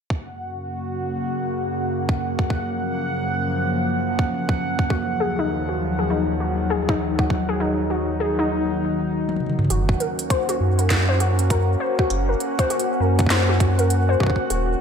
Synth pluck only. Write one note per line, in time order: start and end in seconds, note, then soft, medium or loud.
4.90 5.05 F#4 medium
5.20 5.30 G#4 medium
5.39 5.48 D#4 loud
5.69 5.78 F#4 medium
5.99 6.05 G#4 medium
6.10 6.25 D#4 loud
6.40 6.55 F#4 medium
6.70 6.80 G#4 loud
6.89 6.98 D#4 loud
7.19 7.28 F#4 medium
7.49 7.55 G#4 loud
7.60 7.75 D#4 loud
7.90 8.05 F#4 medium
8.20 8.30 G#4 loud
8.39 8.48 D#4 loud
9.70 9.85 F#4 loud
10.00 10.15 A#4 medium
10.30 10.40 C5 loud
10.49 10.58 F#4 loud
10.79 10.88 A#4 medium
11.09 11.15 C5 loud
11.20 11.35 F#4 loud
11.50 11.65 A#4 medium
11.80 11.90 C5 loud
11.99 12.08 F#4 loud
12.29 12.38 A#4 medium
12.59 12.65 C5 loud
12.70 12.85 F#4 loud
13.00 13.15 A#4 medium
13.30 13.40 C5 loud
13.49 13.58 F#4 loud
13.79 13.88 A#4 medium
14.09 14.15 C5 loud
14.20 14.36 F#4 loud
14.50 14.66 F#4 medium